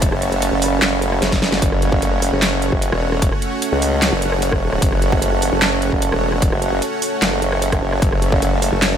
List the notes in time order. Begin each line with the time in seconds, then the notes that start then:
Already playing: E1 A3 C#4 F#4 A4 C#5 F#5 A5 B5
0.02 kick, closed hi-hat
0.12 F#1, cross-stick
0.22 closed hi-hat
0.32 closed hi-hat
0.42 closed hi-hat
0.52 F#1
0.62 open hi-hat
0.82 F#1, snare, clap, closed hi-hat
1.02 closed hi-hat
1.12 cross-stick
1.22 F#1, snare, closed hi-hat
1.32 kick, snare, closed hi-hat
1.42 snare
1.52 snare
1.62 F#1 F#5, kick, closed hi-hat
1.72 cross-stick
1.82 closed hi-hat
1.91 F#1 A5, kick
2.02 closed hi-hat
2.22 open hi-hat
2.32 F#1
2.42 snare, clap, closed hi-hat
2.62 closed hi-hat
2.72 F#1, kick
2.82 closed hi-hat
2.92 E1, cross-stick
3.12 cross-stick
3.22 kick, closed hi-hat
3.32 cross-stick
3.42 closed hi-hat
3.62 closed hi-hat
3.72 C#2
3.82 open hi-hat
4.02 snare, clap, closed hi-hat
4.12 F#1
4.22 closed hi-hat
4.32 cross-stick
4.42 closed hi-hat
4.52 kick, cross-stick
4.72 cross-stick
4.82 F#1, kick, closed hi-hat
4.92 cross-stick
5.02 closed hi-hat
5.10 F#1 E5, kick
5.22 closed hi-hat
5.42 open hi-hat
5.52 F#1
5.62 snare, clap, closed hi-hat
5.82 closed hi-hat
5.92 F#1, kick
6.02 closed hi-hat
6.12 E1, cross-stick
6.32 cross-stick
6.42 kick, closed hi-hat
6.52 F#1, cross-stick
6.62 closed hi-hat
6.82 closed hi-hat
7.02 open hi-hat
7.22 F#1, snare, clap, closed hi-hat
7.42 closed hi-hat
7.52 cross-stick
7.62 closed hi-hat
7.72 kick, cross-stick, closed hi-hat
7.82 F#1
7.92 cross-stick
8.02 F#1 A5, kick, closed hi-hat
8.12 cross-stick
8.22 closed hi-hat
8.31 F#1 C#6, kick
8.42 closed hi-hat
8.62 open hi-hat
8.72 F#1
8.82 snare, clap, closed hi-hat